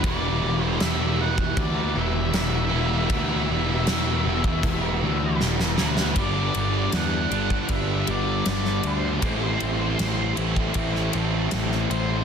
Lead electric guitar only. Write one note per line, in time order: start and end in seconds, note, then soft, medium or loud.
0.07 0.64 D5 medium
0.64 0.81 C5 medium
0.81 1.20 E5 medium
1.21 1.59 F#5 medium
1.60 1.98 D5 medium
1.98 2.35 E5 medium
2.36 3.11 E5 loud
3.12 5.37 E5 medium
5.82 6.19 B4 medium
6.19 6.96 D5 loud
6.95 7.73 F#5 medium
7.71 8.10 E5 loud
8.10 8.48 D5 medium
8.49 8.87 D5 loud
8.87 10.35 C5 medium
11.90 12.24 C5 medium